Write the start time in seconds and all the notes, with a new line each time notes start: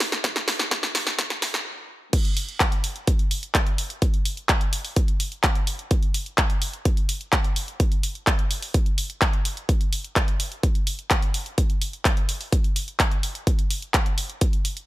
0.00 snare, open hi-hat
0.12 snare, closed hi-hat
0.24 kick, snare, closed hi-hat
0.36 snare, closed hi-hat
0.48 snare, open hi-hat
0.59 snare, closed hi-hat
0.71 kick, snare, closed hi-hat
0.83 snare, closed hi-hat
0.95 snare, open hi-hat
1.07 snare, open hi-hat
1.19 kick, snare, closed hi-hat
1.30 snare, closed hi-hat
1.42 snare, open hi-hat
1.54 snare, closed hi-hat
2.13 kick, closed hi-hat, crash
2.25 closed hi-hat
2.37 open hi-hat
2.49 closed hi-hat
2.60 kick, clap, closed hi-hat
2.72 closed hi-hat
2.84 open hi-hat
2.96 closed hi-hat
3.07 kick, closed hi-hat
3.19 closed hi-hat
3.31 open hi-hat
3.43 closed hi-hat
3.55 kick, clap, closed hi-hat
3.67 closed hi-hat
3.78 open hi-hat
3.90 closed hi-hat
4.02 kick, closed hi-hat
4.14 closed hi-hat
4.25 open hi-hat
4.37 closed hi-hat
4.49 kick, clap, closed hi-hat
4.61 closed hi-hat
4.73 open hi-hat
4.85 open hi-hat
4.96 kick, closed hi-hat
5.08 closed hi-hat
5.20 open hi-hat
5.32 closed hi-hat
5.44 kick, clap, closed hi-hat
5.55 closed hi-hat
5.67 open hi-hat
5.79 closed hi-hat
5.91 kick, closed hi-hat
6.03 closed hi-hat
6.14 open hi-hat
6.26 closed hi-hat
6.38 kick, clap, closed hi-hat
6.50 closed hi-hat
6.62 open hi-hat
6.73 closed hi-hat
6.85 kick, closed hi-hat
6.97 closed hi-hat
7.09 open hi-hat
7.21 closed hi-hat
7.33 kick, clap, closed hi-hat
7.44 closed hi-hat
7.56 open hi-hat
7.68 closed hi-hat
7.80 kick, closed hi-hat
7.92 closed hi-hat
8.03 open hi-hat
8.15 closed hi-hat
8.27 kick, clap, closed hi-hat
8.39 closed hi-hat
8.51 open hi-hat
8.62 open hi-hat
8.74 kick, closed hi-hat
8.86 closed hi-hat
8.98 open hi-hat
9.10 closed hi-hat
9.22 kick, clap, closed hi-hat
9.33 closed hi-hat
9.45 open hi-hat
9.57 closed hi-hat
9.69 kick, closed hi-hat
9.81 closed hi-hat
9.93 open hi-hat
10.04 closed hi-hat
10.16 kick, clap, closed hi-hat
10.28 closed hi-hat
10.40 open hi-hat
10.52 closed hi-hat
10.63 kick, closed hi-hat
10.75 closed hi-hat
10.87 open hi-hat
10.99 closed hi-hat
11.11 kick, clap, closed hi-hat
11.22 closed hi-hat
11.34 open hi-hat
11.46 closed hi-hat
11.58 kick, closed hi-hat
11.70 closed hi-hat
11.82 open hi-hat
11.93 closed hi-hat
12.05 kick, clap, closed hi-hat
12.17 closed hi-hat
12.29 open hi-hat
12.41 open hi-hat
12.52 kick, closed hi-hat
12.64 closed hi-hat
12.76 open hi-hat
12.88 closed hi-hat
13.00 kick, clap, closed hi-hat
13.11 closed hi-hat
13.23 open hi-hat
13.35 closed hi-hat
13.47 kick, closed hi-hat
13.59 closed hi-hat
13.71 open hi-hat
13.82 closed hi-hat
13.94 kick, clap, closed hi-hat
14.06 closed hi-hat
14.18 open hi-hat
14.30 closed hi-hat
14.41 kick, closed hi-hat
14.53 closed hi-hat
14.65 open hi-hat
14.77 closed hi-hat